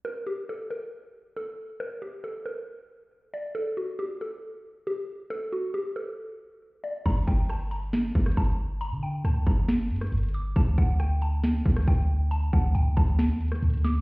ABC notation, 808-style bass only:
X:1
M:4/4
L:1/16
Q:1/4=137
K:Gm
V:1 name="808-style bass" clef=bass
z16 | z16 | z16 | z16 |
G,,,2 G,,,8 G,,,2 G,,,4- | G,,, D,3 D,,2 G,,,4 G,,2 G,,,4 | D,,2 D,,8 D,,2 D,,4- | D,,2 D,,2 D,,2 D,,3 E,,3 D,,4 |]